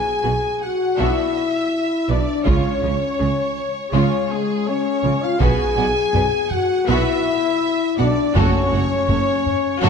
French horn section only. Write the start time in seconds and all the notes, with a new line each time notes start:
Already playing: G#4
0.63 F#4
1.00 E4
2.10 D4
2.47 C#4
3.93 C#4
4.31 G#3
4.69 C#4
5.24 F4
5.39 G#4
6.52 F#4
6.87 E4
7.99 D4
8.35 C#4
9.81 C#4